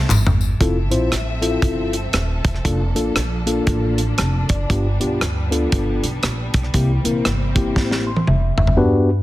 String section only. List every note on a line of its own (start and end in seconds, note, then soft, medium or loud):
0.60 6.70 F3 medium
0.60 2.62 C4 medium
0.60 4.65 A4 medium
0.60 2.62 E5 medium
2.65 4.68 A#3 medium
2.65 6.70 D4 medium
4.70 8.75 G3 medium
4.70 6.73 B3 medium
6.74 8.76 E3 medium
6.74 8.76 A#3 medium
6.74 8.76 C4 medium